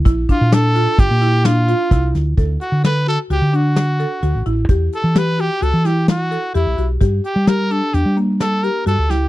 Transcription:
<<
  \new Staff \with { instrumentName = "Trumpet" } { \time 5/4 \key d \major \tempo 4 = 130 r8 f'8 a'4 g'4 f'4. r8 | r8 fis'8 b'8 a'8 g'8 fis'2 r8 | r8 a'8 b'8 g'8 a'8 g'8 fis'4 e'8. r16 | r8 g'8 bes'8 a'8 g'8 r8 a'8 bes'8 a'8 g'8 | }
  \new Staff \with { instrumentName = "Marimba" } { \time 5/4 \key d \major e'8 d'8 d'8 f'4 e'8 d'8 f'8 e'4 | a'4 a'8 fis'8 fis'8 d'4 a'8 fis'8 e'8 | g'4 g'8 fis'8 fis'8 e'4 a'8 g'8 fis'8 | g'4 g'8 d'8 d'8 bes4 g'8 fis'8 e'8 | }
  \new Staff \with { instrumentName = "Fingered electric bass" } { \clef bass \time 5/4 \key d \major bes,,8 r16 bes,4~ bes,16 g,,16 bes,4.~ bes,16 c,8 d,8 | d,8 r16 d4~ d16 cis,16 d4.~ d16 d,16 a,,16 a,,8 | e,8 r16 e4~ e16 cis,16 e4.~ e16 e,16 b,,16 b,,8 | g,8 r16 g4~ g16 e,16 g4.~ g16 g,16 d,16 cis,8 | }
  \new DrumStaff \with { instrumentName = "Drums" } \drummode { \time 5/4 <hh bd>8 <hh bd>8 <hh sn>8 hh8 <hh bd>8 hh8 <hh sn>8 hh8 <hh bd sn>8 <hh sn>8 | <hh bd>8 hh8 <hh sn>8 hh8 hh8 hh8 <hh sn>8 hh8 hh8 hh8 | <hh bd>8 hh8 <hh sn>8 hh8 hh8 <hh sn>8 <hh sn>8 hh8 hh8 hh8 | <hh bd>8 hh8 <hh sn>8 hh8 hh8 hh8 <hh sn>8 hh8 hh8 <hh sn>8 | }
>>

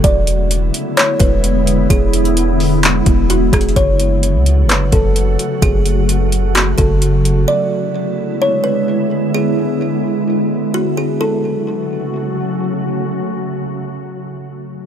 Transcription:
<<
  \new Staff \with { instrumentName = "Kalimba" } { \time 4/4 \key fis \minor \tempo 4 = 129 d''2 cis''8 b'8 r4 | gis'2. fis'8 gis'8 | cis''2 b'8 a'8 r4 | gis'2 fis'8 a'8 r4 |
d''2 cis''8 b'8 r4 | gis'2. fis'8 gis'8 | a'2. r4 | r1 | }
  \new Staff \with { instrumentName = "Ambient pad" } { \clef bass \time 4/4 \key fis \minor <d gis b e'>1~ | <d gis b e'>1 | <cis fis a fis'>1~ | <cis fis a fis'>1 |
<d gis b e'>1~ | <d gis b e'>1 | <cis fis a fis'>1~ | <cis fis a fis'>1 | }
  \new Staff \with { instrumentName = "808-style bass" } { \clef bass \time 4/4 \key fis \minor e,,4. r4 e,,4. | e,,2~ e,,8 e,,4 e,,8 | fis,,4~ fis,,16 cis,8~ cis,32 fis,,8~ fis,,32 fis,,4 r8 | fis,,2~ fis,,8 fis,,4. |
r1 | r1 | r1 | r1 | }
  \new DrumStaff \with { instrumentName = "Drums" } \drummode { \time 4/4 <hh bd>8 hh8 hh8 hh8 <hc hh>8 <hh bd>8 hh8 hh8 | <hh bd>8 hh16 hh16 hh8 hho8 <hc hh>8 <hh bd>8 \tuplet 3/2 { hh16 r16 r16 <hh bd ss>16 hh16 hh16 } | <hh bd>8 hh8 hh8 hh8 <hc hh>8 <hh bd>8 hh8 hh8 | <hh bd>8 hh8 hh8 hh8 <hc hh>8 <hh bd>8 hh8 hh8 |
r4 r4 r4 r4 | r4 r4 r4 r4 | r4 r4 r4 r4 | r4 r4 r4 r4 | }
>>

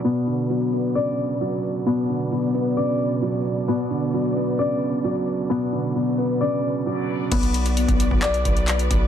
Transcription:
<<
  \new Staff \with { instrumentName = "String section" } { \time 4/4 \key b \minor \tempo 4 = 132 << { <b, b d''>1~ | <b, b d''>1~ | <b, b d''>1~ | <b, b d''>1 |
<b fis' d''>1 | } \\ { b'1 | b'1 | b'1 | b'1 |
b'1 | } >> }
  \new Staff \with { instrumentName = "Harp" } { \time 4/4 \key b \minor b2 d''2 | b2 d''2 | b2 d''2 | b2 d''2 |
b2 d''2 | }
  \new Staff \with { instrumentName = "Grand piano" } { \clef bass \time 4/4 \key b \minor b,8 d8 fis8 b8 cis4 fis4 | b,8 d8 fis8 b8 cis4 fis4 | b,8 d8 fis8 b8 cis4 fis4 | b,8 d8 fis8 b8 cis4 fis4 |
r1 | }
  \new Staff \with { instrumentName = "808-style bass" } { \clef bass \time 4/4 \key b \minor r1 | r1 | r1 | r1 |
b,,4~ b,,16 b,,8 b,,8. b,,4 b,,8 | }
  \new DrumStaff \with { instrumentName = "Drums" } \drummode { \time 4/4 hh16 hh16 hh16 hh16 hh16 hh16 hh8 hh16 hh16 hh16 hh16 hh16 hh16 hh8 | hh16 hh16 hh16 hh16 hh16 hh16 hh8 hh16 hh16 hh16 hh16 hh16 hh16 hh8 | hh16 hh16 hh16 hh16 hh16 hh16 hh8 hh16 hh16 hh16 hh16 hh16 hh16 hh8 | r4 r4 r4 r4 |
<cymc hh bd>16 hh16 hh16 hh16 hh16 <hh bd>16 hh16 bd16 <hc hh>16 hh16 <hh bd>16 hh16 <hc hh>16 hh16 <hh bd>8 | }
>>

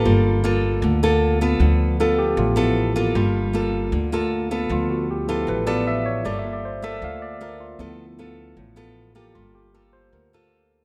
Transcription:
<<
  \new Staff \with { instrumentName = "Nylon-string guitar" } { \time 4/4 \key g \dorian \tempo 4 = 155 << { <bes f' a'>4 <bes f' a'>4. <bes f' a'>4 <b f' a'>8~ | <b f' a'>4 <b f' a'>4. <b f' a'>4 <bes f' a'>8~ | <bes f' a'>4 <bes f' a'>4. <bes f' a'>4 <b f' a'>8~ | <b f' a'>4 r8 <b f' a'>4 <b f' a'>4. |
<bes f' a'>4. <bes f' a'>4. <bes f' a'>8 r8 | <b f' a'>8 r8 <b f' a'>4 r8 <b f' a'>4 <bes f' a'>8~ | <bes f' a'>4 <bes f' a'>4. <bes f' a'>4. | } \\ { g2 d2 | d2 a,2 | g2 d2 | d2 a,2 |
g2 d2 | d2 a,2 | g2 d2 | } >> }
  \new Staff \with { instrumentName = "Tine electric piano" } { \time 4/4 \key g \dorian r1 | r4 a'8 g'8 f'4 r4 | r1 | f'8 fis'8 g'8 a'8 b'8 d''8 e''8 cis''8 |
\tuplet 3/2 { d''8 e''8 d''8 } c''8 e''8 f''8 d''8 bes'8 f'8~ | f'2 r4. g'8 | r8 g'8 a'8 c''8 bes'8 r4. | }
  \new Staff \with { instrumentName = "Tine electric piano" } { \time 4/4 \key g \dorian <bes f'>4. r2 r8 | <f b>4. r4 <f b e'>8 r4 | <bes f'>8 r2 <a bes f'>8 r4 | <f b>4. <f b e'>8 r2 |
r8 <bes f'>4. <a bes f'>8 r4. | <f b e'>8 r2. r8 | <bes f'>4. r2 r8 | }
  \new Staff \with { instrumentName = "Upright bass" } { \clef bass \time 4/4 \key g \dorian g,,2 d,2 | d,2 a,,2 | g,,2 d,2 | d,2 a,,2 |
g,,2 d,2 | d,2 a,,2 | g,,2 d,2 | }
>>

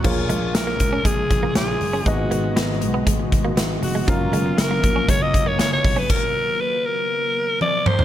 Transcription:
<<
  \new Staff \with { instrumentName = "Alto saxophone" } { \time 4/4 \key bes \phrygian \tempo 4 = 119 f'4 bes'4 aes'4 aes'4 | ges'4 r2 r8 ges'8 | f'4 bes'4 des''16 ees''8 des''16 des''16 des''8 ces''16 | bes'4 ces''8 bes'4. d''8 c''8 | }
  \new Staff \with { instrumentName = "Grand piano" } { \time 4/4 \key bes \phrygian <bes f' aes' des''>1 | <ces' ges' aes' ees''>1 | <ges des' bes' f''>2.~ <ges des' bes' f''>8 r8 | r1 | }
  \new Staff \with { instrumentName = "Grand piano" } { \clef bass \time 4/4 \key bes \phrygian bes,4. r2 r8 | aes,4. r2 r8 | r1 | r1 | }
  \new Staff \with { instrumentName = "Clean electric guitar" } { \time 4/4 \key bes \phrygian f16 r16 aes16 r8 bes16 r16 des'16 aes16 r8 bes16 des'16 r8 des'16 | aes16 r16 bes16 r16 ces'16 r8 ces'16 aes16 r8 bes16 ces'16 r8 aes16 | f16 r16 aes16 r8 bes16 r16 des'16 aes16 r8 bes16 des'16 r8 des'16 | r1 | }
  \new Staff \with { instrumentName = "Ambient pad" } { \time 4/4 \key bes \phrygian <des aes bes f'>1 | <ees aes ces' ges'>1 | <des ges bes f'>2.~ <des ges bes f'>8 r8 | r1 | }
  \new Staff \with { instrumentName = "Slap bass" } { \clef bass \time 4/4 \key bes \phrygian bes,,8 bes,,8 bes,,8 des,8 bes,,8 bes,,8 bes,,8 ges,,8 | aes,,8 aes,,8 aes,,8 ces,8 aes,,8 aes,,8 aes,,8 f,,8 | ges,,8 ges,,8 ges,,8 bes,,8 ges,,8 ges,,8 ges,,8 ces,8 | r1 | }
  \new DrumStaff \with { instrumentName = "Drums" } \drummode { \time 4/4 <cymc bd>8 hh8 <hh sn>8 <hh bd>8 <hh bd>8 <hh bd>8 <hh sn>8 hho8 | <hh bd>8 hh8 <hh sn>8 hh8 <hh bd>8 <hh bd>8 <hh sn>8 hho8 | <hh bd>8 hh8 <hh sn>8 <hh bd>8 <hh bd>8 <hh bd>8 <hh sn>8 <hho bd>8 | <cymc bd>4 r4 r4 tommh8 toml16 tomfh16 | }
>>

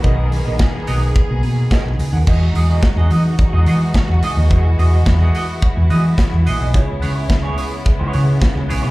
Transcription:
<<
  \new Staff \with { instrumentName = "Clean electric guitar" } { \time 4/4 \key e \lydian \tempo 4 = 107 <b fis' ais' dis''>8 r16 <b fis' ais' dis''>16 r8 <b fis' ais' dis''>16 r4 r16 <b fis' ais' dis''>16 r8 <b fis' ais' fis''>16 | <b fis' gis' dis''>16 r16 <b fis' gis' dis''>16 <b fis' gis' dis''>16 r16 <b fis' gis' dis''>16 <b fis' gis' dis''>16 r8 <b fis' gis' dis''>16 <b fis' gis' dis''>16 r8. <b fis' gis' dis''>16 <b fis' gis' dis''>16 | <b fis' gis' dis''>16 r16 <b fis' gis' dis''>16 <b fis' gis' dis''>16 r16 <b fis' gis' dis''>16 <b fis' gis' dis''>16 r8. <b fis' gis' dis''>16 r8. <b fis' gis' dis''>16 <b fis' gis' dis''>16 | <b e' gis' cis''>16 r16 <b e' gis' cis''>16 <b e' gis' cis''>16 r16 <b e' gis' cis''>16 <b e' gis' cis''>16 r8 <b e' gis' cis''>16 <b e' gis' cis''>16 r8. <b e' gis' cis''>16 <b e' gis' cis''>16 | }
  \new Staff \with { instrumentName = "String section" } { \time 4/4 \key e \lydian << { <dis ais gis'>1 | <e gis fis'>1~ | <e gis fis'>1 | <cis gis>1 | } \\ { b1 | dis'1 | e'1 | b1 | } >> }
  \new Staff \with { instrumentName = "Fingered electric bass" } { \clef bass \time 4/4 \key e \lydian b,,8. ais,,16 r8 b,,8 r16 b,,16 b,8 r16 b,,16 cis,16 dis,16 | e,8 e,8 r16 e,16 e8 r16 e,16 e8 r16 e,16 cis,16 dis,16 | e,8 e,8 e,8 r8. e,16 e8 r16 e,16 ais,,16 b,,16 | cis,8 cis,8 cis,8 r8. cis,16 cis8 r16 cis,16 ais,,16 b,,16 | }
  \new DrumStaff \with { instrumentName = "Drums" } \drummode { \time 4/4 <hh bd>8 hho8 <hh bd sn>8 hho8 <hh bd>8 hho8 <hh bd sn>8 hho8 | <cymc bd>8 hho8 <hh bd sn>8 hho8 <hh bd>8 hho8 <hh bd sn>8 hho8 | <hh bd>8 hho8 <hh bd sn>8 hho8 <hh bd>8 hho8 <hh bd sn>8 hho8 | <hh bd>8 hho8 <hh bd sn>8 hho8 <hh bd>8 hho8 <hh bd sn>8 hho8 | }
>>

